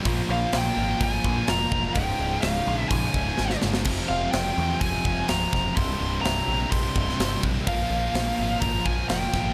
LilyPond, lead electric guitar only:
\new Staff \with { instrumentName = "Lead electric guitar" } { \time 4/4 \tempo 4 = 126 r8 f''8 g''4 aes''4 bes''4 | g''4 f''4 aes''4. r8 | r8 f''8 g''4 aes''4 bes''4 | c'''4 bes''4 c'''4. r8 |
f''2 bes''8 aes''8 g''4 | }